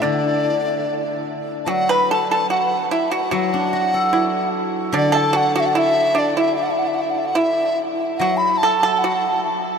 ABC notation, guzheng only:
X:1
M:2/4
L:1/16
Q:1/4=74
K:none
V:1 name="Guzheng" clef=bass
D,8 | ^F,8 | ^F, D ^F A d4 | D,8- |
D,4 z4 | ^F,8 |]